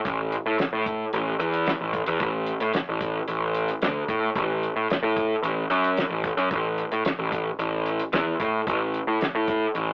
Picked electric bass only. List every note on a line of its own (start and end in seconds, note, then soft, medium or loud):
0.05 0.36 A1 loud
0.46 0.56 A2 medium
0.73 1.03 A2 medium
1.13 1.34 A1 medium
1.39 1.70 E2 loud
1.81 2.01 A1 medium
2.07 2.17 E2 medium
2.20 2.51 A1 loud
2.61 2.71 A2 medium
2.89 3.19 A1 medium
3.28 3.69 A1 medium
3.82 4.03 D2 medium
4.08 4.29 A2 medium
4.36 4.66 A1 loud
4.76 4.86 A2 medium
5.03 5.33 A2 medium
5.43 5.63 A1 medium
5.70 6.01 F#2 loud
6.10 6.31 A1 medium
6.37 6.47 F#2 medium
6.51 6.82 A1 loud
6.92 7.02 A2 medium
7.19 7.49 A1 medium
7.59 8.00 A1 medium
8.13 8.33 E2 loud
8.40 8.60 A2 medium
8.67 8.98 A1 loud
9.07 9.18 A2 medium
9.35 9.65 A2 medium
9.75 9.93 A1 medium